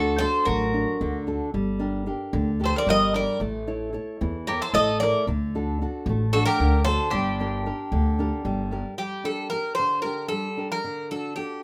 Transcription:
Already playing: upright bass D2, nylon-string guitar D3 D4 F#4 A4, mandolin F#4, bouzouki A4
0.18 nylon-string guitar D4 F#4 A4, mandolin A4, bouzouki C5
0.45 upright bass A1, nylon-string guitar F#3, mandolin F#4, bouzouki A#4
0.74 nylon-string guitar D4 F#4
1.01 upright bass D2, nylon-string guitar D3
1.27 nylon-string guitar D4 F#4 A4
1.54 upright bass G1, nylon-string guitar G3
1.79 nylon-string guitar D4 G4 A#4
2.06 nylon-string guitar D4 G4 A#4
2.33 upright bass D2, nylon-string guitar D3
2.60 nylon-string guitar D4 G4 A#4
2.64 mandolin A4, bouzouki C5
2.76 mandolin A#4, bouzouki D5
2.87 upright bass G1, nylon-string guitar G3, mandolin A#4, bouzouki D#5
3.14 nylon-string guitar D4 G4 A#4, mandolin A#4, bouzouki D5
3.40 upright bass A1, nylon-string guitar A3
3.67 nylon-string guitar E4 A4 C#5
3.93 nylon-string guitar E4 A4 C#5
4.21 upright bass E2, nylon-string guitar E3
4.47 nylon-string guitar E4 A4 C#5, mandolin G4, bouzouki A#4
4.62 mandolin A4, bouzouki C5
4.73 upright bass A1, nylon-string guitar A3, mandolin A4, bouzouki D#5
5.00 nylon-string guitar E4 A4 C#5, mandolin A#4, bouzouki D5
5.27 upright bass D2, nylon-string guitar D3
5.55 nylon-string guitar D4 F#4 A4
5.81 nylon-string guitar D4 F#4 A4
6.06 upright bass A1, nylon-string guitar A3
6.33 nylon-string guitar D4 F#5, mandolin F#4, bouzouki A4
6.46 mandolin G4, bouzouki A#4
6.60 upright bass D2, nylon-string guitar D3
6.85 nylon-string guitar D4 F#4 A4, mandolin A4, bouzouki C5
7.10 upright bass G1, nylon-string guitar G3, mandolin D4, bouzouki G4
7.40 nylon-string guitar D4 G4 A#4
7.66 nylon-string guitar D4 G4 A#4
7.92 upright bass D2, nylon-string guitar D3
8.19 nylon-string guitar D4 G4 A#4
8.45 upright bass G1, nylon-string guitar G3
8.71 nylon-string guitar D4 G4 A#4
8.98 nylon-string guitar G3, bouzouki G4
9.24 nylon-string guitar D4 G4 A#4, bouzouki A4
9.50 nylon-string guitar D4 G4 A#4, bouzouki A#4
9.75 bouzouki C5
9.79 nylon-string guitar D3
10.02 nylon-string guitar D4 G4 A#4, bouzouki A#4
10.28 nylon-string guitar G3, bouzouki A4
10.57 nylon-string guitar D4 G4 A#4
10.72 bouzouki A#4
10.84 nylon-string guitar D3
11.11 nylon-string guitar D4 F#4 A4, bouzouki A4
11.36 nylon-string guitar D4 F#4 A4, bouzouki G4

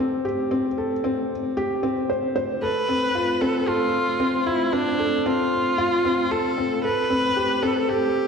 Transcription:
Already playing: felt piano G4 A4
0.00 felt piano C4
0.25 felt piano G4
0.51 felt piano C4
0.78 felt piano A4
1.04 felt piano C4
1.57 felt piano G4
1.83 felt piano C4
2.10 felt piano C5
2.36 felt piano C5
2.62 felt piano A4, viola B4
2.89 felt piano C4
3.15 felt piano F4
3.41 felt piano C4, viola A4
3.67 viola F4, felt piano A4
4.20 felt piano C4
4.46 viola E4, felt piano F4
4.73 felt piano C4, viola D4
4.99 felt piano A4
5.26 felt piano C4, viola F4
5.78 felt piano F4
6.05 felt piano C4
6.31 felt piano A4, viola A4
6.58 felt piano C4
6.84 felt piano A4, viola B4
7.10 felt piano C4
7.36 felt piano G4
7.63 felt piano C4, viola A4
7.89 viola G4, felt piano A4

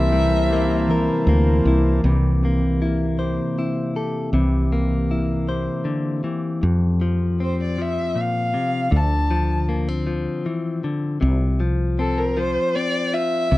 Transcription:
Already playing: fretless electric bass C2, clean electric guitar C3 G3 A#3 C4, harp E3 A#3 C4 G4, harmonium E3 A#4 C5 A5, violin E5
0.12 clean electric guitar G3, harp C4
0.30 harp A#3
0.50 clean electric guitar A#3, harp G4
0.69 harp C4
0.88 harp E3, clean electric guitar A#4
1.07 harp A#3
1.27 fretless electric bass D2, clean electric guitar A#3, harp C4
1.47 harp A#3
1.65 fretless electric bass C2, clean electric guitar E4, harp G4
1.86 harp C4
2.04 fretless electric bass C2, clean electric guitar C3, harp E3 G4
2.42 clean electric guitar A#3, harp C4
2.82 harp A#3, clean electric guitar E4
3.19 harp G4, clean electric guitar C5
3.57 harp C4, clean electric guitar E4
3.96 harp G4, clean electric guitar A4
4.33 fretless electric bass C2, clean electric guitar C3, harp E3 G4
4.72 clean electric guitar A#3, harp C4
5.10 harp A#3, clean electric guitar E4
5.48 harp G4, clean electric guitar C5
5.85 clean electric guitar D3, harp C4
6.24 clean electric guitar E3, harp G4
6.63 fretless electric bass F2, clean electric guitar F2
7.01 clean electric guitar F3
7.40 clean electric guitar C4, violin C5
7.63 violin D5
7.78 clean electric guitar F3, violin E5
8.16 clean electric guitar A#2
8.21 violin F5
8.54 clean electric guitar C3
8.91 fretless electric bass D2, clean electric guitar D3
8.96 violin A5
9.31 clean electric guitar F3
9.69 clean electric guitar A#3
9.89 clean electric guitar C4
10.07 clean electric guitar F3
10.46 clean electric guitar E3
10.84 clean electric guitar D3
11.21 fretless electric bass C2, clean electric guitar C3
11.60 clean electric guitar F3
11.99 clean electric guitar C4, violin A4
12.18 violin A#4
12.37 clean electric guitar F3, violin C5
12.76 clean electric guitar C4, violin D5
13.13 clean electric guitar F4, violin E5
13.51 fretless electric bass C2, clean electric guitar C3

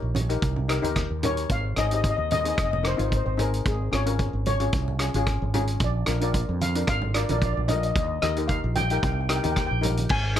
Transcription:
Already playing: steel pan C#5
0.02 fretless electric bass A#1
0.15 closed hi-hat, high conga, low conga
0.29 steel pan D#4 G4 A#4, closed hi-hat
0.42 fretless electric bass C2, kick, closed hi-hat
0.56 low conga
0.68 steel pan D#4 G4 A#4, cross-stick, closed hi-hat
0.82 fretless electric bass D#2, steel pan D#4 G4 A#4, closed hi-hat, high conga
0.96 kick, cross-stick, closed hi-hat, high conga
1.10 fretless electric bass D#2
1.23 steel pan D#4 G4 A#4 C#5, closed hi-hat, low conga
1.37 closed hi-hat
1.49 fretless electric bass G#1, steel pan F5, kick, closed hi-hat
1.76 fretless electric bass G#1, steel pan C4 D#4 G#4 D#5, cross-stick, closed hi-hat
1.87 steel pan D#5, closed hi-hat
1.91 steel pan C4 D#4 G4 D#5
2.01 steel pan D#5, kick, closed hi-hat
2.09 steel pan D#5
2.17 fretless electric bass D#2, steel pan D#5
2.31 steel pan D#5, closed hi-hat, high conga, low conga
2.40 steel pan D#5
2.44 steel pan C4 D#4 G#4 D#5, closed hi-hat
2.56 fretless electric bass F1, steel pan D#5, kick, cross-stick, closed hi-hat
2.63 steel pan D#5
2.71 steel pan D#5, low conga
2.83 steel pan C4 D#4 A#4, cross-stick, closed hi-hat
2.87 steel pan C5
2.96 fretless electric bass G#1, steel pan C4 D#4 F4 C5, closed hi-hat, high conga
3.03 steel pan C5
3.09 steel pan C5, kick, closed hi-hat
3.17 steel pan C5
3.26 fretless electric bass G#1, steel pan C5
3.37 steel pan C4 D#4 G#4 A#4, closed hi-hat, low conga
3.54 closed hi-hat
3.65 fretless electric bass G#1, steel pan G#4, kick, closed hi-hat
3.92 fretless electric bass G#1, steel pan C#4 F4 G#4 C#5, cross-stick, closed hi-hat
4.06 steel pan C#4 F4 A#4, closed hi-hat
4.19 kick, closed hi-hat
4.33 fretless electric bass G#1
4.46 steel pan C#5, closed hi-hat, high conga, low conga
4.60 steel pan C#4 F4 G#4, closed hi-hat
4.72 fretless electric bass C2, kick, closed hi-hat
4.88 low conga
4.99 steel pan C#4 F4 G#4, cross-stick, closed hi-hat
5.14 fretless electric bass G#1, steel pan C#4 F4 G#4, closed hi-hat, high conga
5.27 kick, cross-stick, closed hi-hat
5.42 fretless electric bass G#1
5.54 steel pan C#4 F4 G#4, closed hi-hat, low conga
5.67 closed hi-hat
5.80 fretless electric bass A#1, kick, closed hi-hat
5.84 steel pan D5
6.06 fretless electric bass A#1, steel pan D4 F4 A#4, cross-stick, closed hi-hat
6.21 steel pan D4 F4 A#4 D5, closed hi-hat
6.34 kick, closed hi-hat
6.49 fretless electric bass F2
6.61 steel pan F5, closed hi-hat, high conga
6.75 steel pan D4 F4 A#4, closed hi-hat
6.87 fretless electric bass G#1, steel pan F5, kick, cross-stick, closed hi-hat
7.02 low conga
7.14 steel pan D4 F4 A#4 D5, cross-stick, closed hi-hat
7.23 steel pan D5
7.29 fretless electric bass A#1, steel pan D4 F4 A#4 D5, closed hi-hat, high conga
7.38 steel pan D5, kick, closed hi-hat
7.46 steel pan D5
7.53 steel pan D5
7.57 fretless electric bass A#1
7.68 steel pan D4 F4 A#4 D#5, closed hi-hat, low conga
7.76 steel pan D#5
7.83 steel pan D#5, closed hi-hat
7.91 steel pan D#5
7.95 fretless electric bass D#2, steel pan D#5, kick, closed hi-hat
8.07 steel pan D#5
8.22 fretless electric bass D#2, steel pan D#4 G4 A#4 D#5, cross-stick, closed hi-hat, high conga
8.36 steel pan D#4 G4 A#4, closed hi-hat
8.48 steel pan F5, kick, closed hi-hat
8.64 fretless electric bass A#1
8.75 steel pan G5, closed hi-hat, high conga, low conga
8.84 steel pan G5
8.90 steel pan D#4 G4 A#4 G5, closed hi-hat
8.98 steel pan G5
9.03 fretless electric bass C2, steel pan G5, kick, closed hi-hat
9.13 steel pan G5
9.20 steel pan G5
9.29 steel pan D#4 G4 A#4 G5, cross-stick, closed hi-hat
9.36 steel pan G5
9.43 fretless electric bass D#2, steel pan D#4 G4 A#4 G5, closed hi-hat, high conga
9.52 steel pan G5
9.56 steel pan G5, kick, cross-stick, closed hi-hat
9.66 steel pan G5
9.71 fretless electric bass A#1
9.81 steel pan D#4 G4 A#4, closed hi-hat, low conga
9.97 closed hi-hat, high conga
10.09 fretless electric bass G#1, steel pan G#5, kick, crash
10.36 steel pan D#4, cross-stick, closed hi-hat

